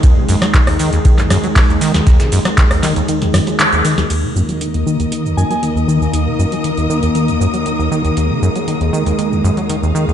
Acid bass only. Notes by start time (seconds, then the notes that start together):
0.04 D#2
0.17 C#3
0.29 F#2
0.42 F#3
0.54 D#3
0.68 D#2
0.80 D#3
0.93 D#2
1.05 D#3
1.18 D#2
1.31 F#2
1.44 F#3
1.56 D#3
1.69 D#2
1.82 D#3
1.95 D#2
2.07 D#2
2.20 C#3
2.32 F#2
2.45 F#3
2.58 D#3
2.71 D#2
2.83 D#3
2.96 D#2
3.09 D#3
3.22 D#2
3.34 F#2
3.47 F#3
3.60 D#3
3.73 D#2
3.85 D#3
3.98 D#2
4.10 D#2
4.24 C#3
4.36 F#2
4.49 F#3
4.61 D#3
4.74 D#2
4.87 D#3
5.00 D#2
5.12 D#3
5.25 D#2
5.37 F#2
5.50 F#3
5.63 D#3
5.76 D#2
5.88 D#3
6.01 D#2
6.13 D#2
6.27 C#3
6.39 F#2
6.52 F#3
6.64 D#3
6.78 D#2
6.90 D#3
7.03 D#2
7.15 D#3
7.28 D#2
7.41 F#2
7.54 F#3
7.66 D#3
7.79 D#2
7.91 D#3
8.05 D#2
8.17 D#2
8.30 C#3
8.42 F#2
8.55 F#3
8.68 D#3
8.81 D#2
8.93 D#3
9.06 D#2
9.19 D#3
9.32 D#2
9.44 F#2
9.57 F#3
9.70 D#3
9.83 D#2
9.95 D#3
10.08 D#2